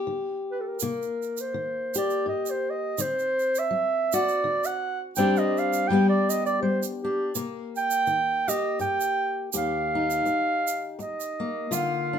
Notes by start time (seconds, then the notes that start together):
Already playing: B3 G4
0.07 D3
0.52 B4
0.61 A4
0.68 A#4
0.80 C3 A#3, shaker
1.02 shaker
1.22 shaker
1.37 C5, shaker
1.54 D#3
1.94 G4 D5, shaker
2.10 shaker
2.26 G2 D#5
2.46 shaker
2.50 C5
2.70 D#5
2.98 D3 C4 C5, shaker
3.19 shaker
3.39 shaker
3.55 E5, shaker
3.71 F#3
4.12 F#4 D5, shaker
4.28 shaker
4.44 D3
4.64 F#5, shaker
5.16 G2 G3 C4 D4 G4 G5, shaker
5.36 D#5, shaker
5.57 F5, shaker
5.73 shaker
5.88 G2 G3 B3 G5
5.92 D4 G4
6.09 D5
6.29 D#5, shaker
6.46 D5, shaker
6.62 G3 C5
6.83 shaker
7.04 D4 G4
7.35 C3 A#3, shaker
7.76 G5, shaker
7.91 shaker
8.06 D#3, shaker
8.48 G4 D#5, shaker
8.79 G2 G5, shaker
9.01 shaker
9.53 D#2 G4 F5, shaker
9.95 D#4
10.10 shaker
10.25 muted steel-string acoustic guitar stroke, shaker
10.67 shaker
10.99 D#5, muted steel-string acoustic guitar stroke, shaker
11.20 shaker
11.40 A#3
11.71 D3 F4 F5, shaker
12.13 D4